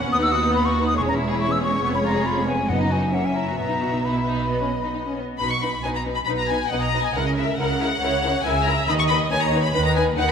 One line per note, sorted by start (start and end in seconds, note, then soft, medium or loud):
0.00 0.11 C#4 soft
0.00 0.12 C#4 medium
0.00 0.97 F#5 medium
0.11 0.95 D#2 medium
0.11 0.21 B3 medium
0.11 0.97 B3 medium
0.11 0.17 D#6 medium
0.21 0.32 D#4 medium
0.21 0.33 E6 medium
0.30 0.42 F#4 medium
0.30 0.54 D#6 medium
0.42 0.53 D#4 soft
0.53 0.64 B3 medium
0.53 0.67 B5 medium
0.63 0.75 D#4 medium
0.63 0.86 C#6 medium
0.74 0.86 F#4 medium
0.85 0.97 D#4 soft
0.85 0.97 D#6 medium
0.97 1.83 E1 medium
0.97 1.83 E2 medium
0.97 1.07 G#3 medium
0.97 2.67 G#3 medium
0.97 2.70 C#5 medium
0.97 1.02 C#6 medium
1.07 1.18 C#4 soft
1.07 1.15 A#5 medium
1.18 1.29 E4 medium
1.29 1.40 G#4 soft
1.29 1.40 B5 medium
1.39 1.50 E4 medium
1.39 1.53 C#6 medium
1.50 1.61 C#4 soft
1.50 1.62 E6 medium
1.62 1.72 G#3 soft
1.62 1.83 C#6 medium
1.73 1.83 C#4 soft
1.83 2.68 F1 medium
1.83 2.68 F2 medium
1.83 1.93 B3 medium
1.83 1.89 C#6 medium
1.94 2.05 C#4 soft
1.94 2.00 B5 medium
2.05 2.16 F4 soft
2.05 2.28 A#5 medium
2.15 2.26 G#4 soft
2.25 2.37 F4 soft
2.25 2.47 B5 medium
2.35 2.47 C#4 soft
2.47 2.59 B3 soft
2.47 2.70 G#5 medium
2.59 2.70 C#4 soft
2.69 3.59 F#1 soft
2.69 3.11 F#2 medium
2.69 3.59 F#2 soft
2.69 2.80 B3 soft
2.69 3.14 B3 soft
2.69 3.14 D#5 soft
2.69 2.80 F#5 medium
2.81 2.92 D#4 soft
2.81 2.93 A#5 medium
2.91 3.03 F#4 soft
2.91 3.15 G#5 medium
3.03 3.14 D#4 soft
3.13 3.24 A#3 soft
3.13 3.59 C#4 soft
3.13 4.46 E5 soft
3.13 3.27 F#5 medium
3.24 3.36 C#4 soft
3.24 3.37 G#5 medium
3.35 3.47 E4 soft
3.35 3.59 A#5 medium
3.48 3.59 F#4 soft
3.58 5.19 B1 soft
3.58 5.19 B2 soft
3.58 3.70 B3 soft
3.58 5.16 B3 soft
3.58 4.07 A#5 medium
3.70 3.82 D#4 soft
3.82 3.93 F#4 soft
3.93 4.03 D#4 soft
4.04 4.15 D#4 soft
4.04 5.17 B5 medium
4.16 4.27 E4 soft
4.27 4.49 D#4 soft
4.49 4.60 B3 soft
4.49 5.19 D#5 soft
4.61 4.69 C#4 soft
4.83 4.88 D#4 soft
4.94 4.98 D#4 soft
5.05 5.17 C#4 soft
5.17 5.39 B3 soft
5.38 5.78 B1 medium
5.38 5.79 B2 medium
5.38 5.48 D#4 soft
5.38 5.48 B4 soft
5.38 5.49 B5 medium
5.50 5.62 C#6 medium
5.62 5.70 D#4 soft
5.62 5.70 B4 soft
5.62 5.84 B5 medium
5.83 6.22 B1 medium
5.83 6.22 B2 medium
5.83 5.92 D#4 soft
5.83 5.92 B4 soft
5.83 5.88 G#5 medium
5.95 6.03 A#5 medium
6.07 6.15 D#4 soft
6.07 6.15 B4 soft
6.16 6.20 B5 medium
6.26 6.66 B1 medium
6.26 6.66 B2 medium
6.26 6.36 D#4 soft
6.26 6.68 B4 soft
6.26 6.36 B4 soft
6.26 6.30 B5 medium
6.38 6.49 A#5 medium
6.49 6.59 D#4 soft
6.49 6.58 B4 soft
6.49 6.71 G#5 medium
6.70 7.09 B1 medium
6.70 7.10 B2 medium
6.70 6.80 D#4 soft
6.70 6.80 B4 soft
6.70 7.14 D#5 medium
6.70 6.82 F#5 medium
6.81 7.03 A#5 medium
6.93 7.01 D#4 soft
6.93 7.02 B4 soft
7.04 7.15 G#5 medium
7.14 7.53 C#2 medium
7.14 7.54 C#3 medium
7.14 7.23 E4 medium
7.14 7.23 A#4 soft
7.14 8.02 A#4 medium
7.14 7.26 F#5 medium
7.26 7.30 D#5 medium
7.37 7.46 E4 soft
7.37 7.46 A#4 soft
7.37 7.58 E5 medium
7.58 7.96 C#2 medium
7.58 7.97 C#3 medium
7.58 7.68 E4 soft
7.58 7.68 A#4 soft
7.58 8.43 F#5 medium
7.81 7.89 E4 soft
7.81 7.89 A#4 soft
8.01 8.39 C#2 medium
8.01 8.40 C#3 medium
8.01 8.11 E4 medium
8.01 8.11 A#4 medium
8.01 8.44 C#5 medium
8.23 8.31 E4 soft
8.23 8.31 A#4 soft
8.45 8.83 C#2 medium
8.45 8.84 C#3 medium
8.45 8.53 E4 medium
8.45 8.53 A#4 medium
8.45 8.88 E5 medium
8.45 8.66 G#5 medium
8.66 8.75 E4 soft
8.66 8.74 A#4 soft
8.66 8.88 A#5 medium
8.88 9.26 D#2 medium
8.88 9.27 D#3 medium
8.88 8.97 D#4 medium
8.88 8.97 B4 medium
8.88 9.32 D#5 medium
8.88 8.92 B5 medium
8.99 9.03 C#6 medium
9.09 9.19 D#4 soft
9.09 9.19 B4 medium
9.09 9.17 B5 medium
9.31 9.69 D#2 medium
9.31 9.70 D#3 medium
9.31 9.39 D#4 medium
9.31 9.39 B4 soft
9.31 9.74 C#5 medium
9.31 9.42 G#5 medium
9.42 9.64 A#5 medium
9.53 9.61 D#4 medium
9.53 9.61 B4 soft
9.64 9.73 B5 medium
9.74 10.13 D#2 medium
9.74 10.13 D#3 medium
9.74 9.82 D#4 medium
9.74 10.17 B4 medium
9.74 9.82 B4 medium
9.74 9.85 B5 medium
9.85 9.96 A#5 medium
9.95 10.04 D#4 medium
9.95 10.03 B4 soft
9.95 10.04 G#5 medium
10.16 10.32 D#2 medium
10.16 10.32 D#3 medium
10.16 10.24 D#4 medium
10.16 10.32 A#4 medium
10.16 10.25 B4 medium
10.16 10.28 F#5 medium
10.28 10.32 B5 medium